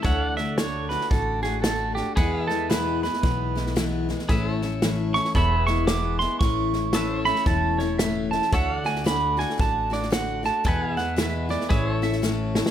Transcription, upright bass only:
X:1
M:4/4
L:1/8
Q:"Swing" 1/4=113
K:A
V:1 name="Upright bass" clef=bass
D,,4 A,,,4 | E,,4 B,,,4 | A,,,4 E,,,4 | A,,,4 E,,,4 |
D,,4 A,,,4 | E,,4 A,,,4 |]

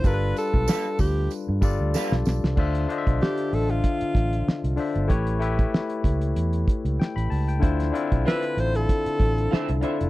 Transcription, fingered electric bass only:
X:1
M:4/4
L:1/16
Q:"Swing 16ths" 1/4=95
K:Ddor
V:1 name="Fingered electric bass" clef=bass
G,,,2 z B,,, z2 D,,2 z G,, G,,, D,, z B,,, B,,, C,, | D,,2 z B,,, z2 A,,,2 z2 A,,,2 z C,, z G,,, | A,,,4 z2 ^C,,2 E,,2 z C,, z A,,, C,,2 | D,,2 z B,,, z2 A,,,2 z2 A,,,2 z C,, z F,,, |]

